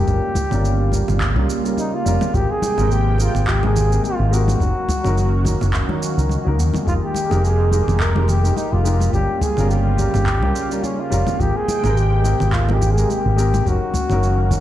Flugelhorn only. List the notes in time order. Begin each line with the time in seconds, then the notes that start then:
Already playing: G4
1.78 D#4
1.94 F4
2.34 G4
2.50 G#4
2.92 G4
3.21 F4
3.48 G4
3.65 G#4
4.05 F4
4.33 F#4
6.87 F4
7.04 G4
7.44 G#4
7.72 G#4
8.00 A#4
8.29 G4
8.57 D#4
8.72 F4
9.13 G4
9.42 G#4
9.70 G4
10.84 C#4
11.00 F4
11.40 G4
11.56 G#4
11.98 G4
12.53 F4
12.73 G4
12.91 G#4
13.10 G4
13.68 F#4